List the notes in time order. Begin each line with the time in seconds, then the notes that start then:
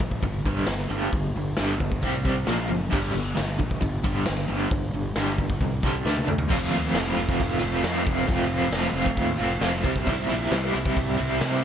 0.00 A#1 G2 D3, kick
0.11 kick
0.22 G1 G2 D3, kick, open hi-hat
0.46 G2 D3 G3, kick
0.67 G1 G2 D3, snare, open hi-hat
0.90 G1 G2 D3 G3
1.12 G1 G2 D3, kick, open hi-hat
1.36 G1 G2 D3
1.57 G1 G2 D3 G3, snare, open hi-hat
1.79 G2 D3, kick
1.92 kick
2.02 C2 C3 G3 C4, kick, open hi-hat
2.24 C3 G3 C4, kick
2.46 A#1 A#2 F3 A#3, snare, open hi-hat
2.69 F#1 A#2 F3
2.90 G1 G2 D3 G3, kick, crash
3.12 G1 G2 D3
3.36 G1 G2 D3, snare, open hi-hat
3.59 A#1 G2 D3, kick
3.71 kick
3.81 G1 G2 D3, kick, open hi-hat
4.03 G2 D3 G3, kick
4.26 G1 G2 D3, snare, open hi-hat
4.48 G1 G2 D3 G3
4.71 G1 G2 D3, kick, open hi-hat
4.94 G1 G2 D3
5.16 G1 G2 D3 G3, snare, open hi-hat
5.38 G2 D3, kick
5.50 kick
5.61 C2 G2 D3, kick, open hi-hat
5.83 G2 D3 G3, kick
6.05 D2 D3 A3 D4, snare
6.17 high tom
6.28 D2 D3 A3, mid tom
6.38 floor tom
6.48 F1 F3 A3 C4 F4, kick, crash
6.71 D#2 A3 C4 F4
6.93 F1 F3 A3 C4, snare, crash
6.99 F4
7.17 F1 A3 C4 F4
7.29 kick
7.40 F1, kick, crash
7.60 F1 C4 F4
7.64 A3
7.82 F2 F3 A3 C4 F4, snare, crash
8.07 F1, kick
8.26 F1 F3 A3 C4, kick, crash
8.30 F4
8.48 C4 F4
8.53 A3
8.71 F1 F3 A3 C4 F4, snare, crash
8.93 F1 A3 C4 F4
9.06 kick
9.17 D#2, kick, crash
9.36 F1 C4 F4
9.41 A3
9.60 F1 F3 A3 C4 F4, snare, crash
9.83 C2 C3 G3 C4 E4, kick
9.96 kick
10.06 C2 C3 G3 C4 E4, kick, crash
10.29 A#1 C4 E4
10.33 G3
10.51 C2 C3 G3 C4, snare, crash
10.55 E4
10.73 C2 G3 C4 E4
10.86 kick
10.97 C2, kick, crash
11.17 C2 G3 C4 E4
11.39 C3 G3 C4 E4, snare, crash